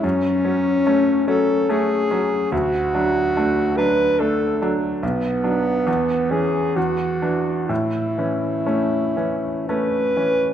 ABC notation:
X:1
M:3/4
L:1/8
Q:1/4=71
K:A
V:1 name="Alto saxophone"
C3 A G2 | F3 B A z | B,3 G F2 | E4 B2 |]
V:2 name="Grand piano"
F,, [F,C] [A,C] [F,C] [A,C] [F,C] | D,, [F,D] [A,D] [F,D] [A,D] [F,D] | B,,, [F,D] E,, [E,C] E,, [E,D] | A,, [E,C] [A,C] [E,C] [A,C] [E,C] |]